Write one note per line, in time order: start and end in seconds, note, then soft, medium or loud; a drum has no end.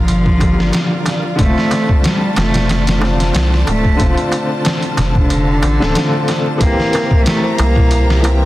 0.00 0.71 G1 medium
0.00 0.37 D3 medium
0.00 1.28 F3 loud
0.00 0.38 G3 medium
0.00 0.39 A#3 medium
0.00 0.40 F4 medium
0.00 6.57 F4 medium
0.00 1.35 A#4 medium
0.00 6.57 D5 medium
0.00 1.37 F5 medium
0.08 closed hi-hat medium
0.08 darbuka tek soft
0.26 kick medium
0.26 darbuka tek soft
0.38 1.34 D3 medium
0.38 1.35 G3 medium
0.38 kick medium
0.38 closed hi-hat medium
0.38 darbuka tek medium
0.43 1.37 A#3 medium
0.43 1.38 F4 medium
0.58 snare soft
0.58 darbuka tek soft
0.73 snare loud
0.73 closed hi-hat medium
0.73 darbuka tek soft
0.91 darbuka tek soft
1.06 snare soft
1.06 closed hi-hat medium
1.06 darbuka tek medium
1.23 darbuka tek soft
1.36 1.55 F1 medium
1.36 2.97 D3 medium
1.36 2.98 A3 medium
1.36 6.57 C5 medium
1.36 6.57 A5 medium
1.36 kick loud
1.36 closed hi-hat medium
1.36 darbuka tek soft
1.41 1.99 A3 loud
1.41 2.99 C4 medium
1.41 3.01 F4 loud
1.56 snare soft
1.56 darbuka tek soft
1.71 snare soft
1.71 closed hi-hat medium
1.71 darbuka tek medium
1.89 kick medium
1.89 darbuka tek soft
2.04 2.34 G3 medium
2.04 snare loud
2.04 closed hi-hat medium
2.04 darbuka tek soft
2.21 darbuka tek soft
2.36 3.32 F1 medium
2.36 2.97 A3 loud
2.36 snare loud
2.36 closed hi-hat medium
2.36 darbuka tek medium
2.54 snare loud
2.54 closed hi-hat medium
2.54 darbuka tek soft
2.54 darbuka dum medium
2.69 snare medium
2.69 closed hi-hat medium
2.69 darbuka tek medium
2.87 snare loud
2.87 closed hi-hat medium
2.87 darbuka tek soft
2.99 3.95 D3 medium
2.99 3.96 A3 medium
2.99 darbuka tek medium
3.03 3.97 C4 medium
3.03 3.99 F4 medium
3.03 snare soft
3.19 snare soft
3.19 closed hi-hat medium
3.19 darbuka tek soft
3.33 3.64 C2 loud
3.33 snare loud
3.33 closed hi-hat medium
3.33 darbuka tek soft
3.52 snare soft
3.52 darbuka tek soft
3.67 3.96 D1 medium
3.67 4.13 A3 medium
3.67 closed hi-hat medium
3.67 darbuka tek medium
3.83 kick medium
3.83 darbuka tek soft
3.96 4.16 F1 medium
3.96 5.58 D3 medium
3.96 5.59 A3 medium
3.96 kick loud
3.96 closed hi-hat medium
3.96 darbuka tek soft
4.01 5.60 C4 medium
4.01 5.62 F4 loud
4.17 closed hi-hat soft
4.17 darbuka tek soft
4.32 closed hi-hat medium
4.32 darbuka tek medium
4.49 darbuka tek soft
4.65 snare loud
4.65 closed hi-hat medium
4.65 darbuka tek medium
4.81 closed hi-hat soft
4.81 darbuka tek soft
4.97 5.63 F1 medium
4.97 snare soft
4.97 closed hi-hat medium
4.97 darbuka tek medium
4.97 darbuka dum medium
5.15 6.49 D3 loud
5.15 kick loud
5.15 darbuka tek soft
5.15 darbuka dum medium
5.30 closed hi-hat medium
5.30 darbuka tek soft
5.48 darbuka tek soft
5.62 5.79 A1 loud
5.62 closed hi-hat medium
5.62 darbuka tek medium
5.80 5.95 D1 medium
5.80 5.92 D3 medium
5.80 5.92 A3 medium
5.80 5.93 C4 medium
5.80 5.94 A4 loud
5.80 snare soft
5.80 darbuka tek soft
5.95 6.57 D3 medium
5.95 6.57 A3 medium
5.95 6.58 C4 medium
5.95 6.59 F4 loud
5.95 snare loud
5.95 closed hi-hat medium
5.95 darbuka tek medium
6.14 darbuka tek soft
6.28 snare soft
6.28 closed hi-hat medium
6.28 darbuka tek medium
6.46 darbuka tek soft
6.58 6.76 C2 loud
6.58 8.19 E3 medium
6.58 8.20 A#3 medium
6.58 7.20 A#3 loud
6.58 6.92 E4 medium
6.58 8.45 G4 medium
6.58 8.45 C5 medium
6.58 8.45 E5 medium
6.58 8.45 A#5 medium
6.58 kick loud
6.58 closed hi-hat medium
6.58 darbuka tek soft
6.63 8.21 C4 medium
6.63 8.23 G4 loud
6.80 snare soft
6.80 darbuka tek soft
6.93 7.24 A#4 loud
6.93 snare soft
6.93 closed hi-hat medium
6.93 darbuka tek medium
7.11 kick medium
7.11 darbuka tek soft
7.25 7.56 A3 medium
7.25 7.43 E4 medium
7.25 snare loud
7.25 closed hi-hat medium
7.25 darbuka tek soft
7.43 7.74 C5 medium
7.43 darbuka tek soft
7.58 8.45 C2 medium
7.58 8.18 A#3 loud
7.58 closed hi-hat medium
7.58 darbuka tek loud
7.76 7.89 E4 medium
7.76 kick loud
7.76 darbuka tek soft
7.76 darbuka dum medium
7.90 8.22 E4 medium
7.90 closed hi-hat medium
7.90 darbuka tek medium
8.10 snare medium
8.10 darbuka tek soft
8.20 8.45 E3 medium
8.20 8.45 A#3 medium
8.20 8.45 A#4 medium
8.20 closed hi-hat medium
8.25 8.45 C4 medium
8.25 8.45 G4 medium
8.25 darbuka tek loud